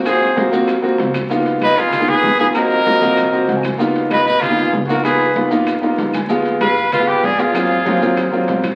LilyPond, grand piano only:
\new Staff \with { instrumentName = "Grand piano" } { \time 4/4 \key des \major \tempo 4 = 192 << { r1 | r1 | r2. ges''16 aes''8. | r1 |
r2. f''8 aes''8 | r1 | r1 | } \\ { <bes c' f' ges'>8. r16 <bes c' f' ges'>16 r16 <bes c' f' ges'>8. r16 <bes c' f' ges'>4 r8 | <bes ces' ees' f'>4. r8. <bes ces' ees' f'>8. r8 <bes ces' ees' f'>16 r16 | <bes c' f' ges'>8. r16 <bes c' f' ges'>16 r16 <bes c' f' ges'>8. r16 <bes c' f' ges'>4 r8 | <bes ces' ees' f'>4. r8. <bes ces' ees' f'>8. r8 <bes ces' ees' f'>16 r16 |
<bes ces' ees' f'>8. r16 <bes ces' ees' f'>16 r16 <bes ces' ees' f'>8. r16 <bes ces' ees' f'>4 r8 | <aes b f'>4. r8. <aes b f'>8. r8 <aes b f'>16 r16 | <ges bes c' f'>8. r16 <ges bes c' f'>16 r16 <ges bes c' f'>8. r16 <ges bes c' f'>4 r8 | } >> }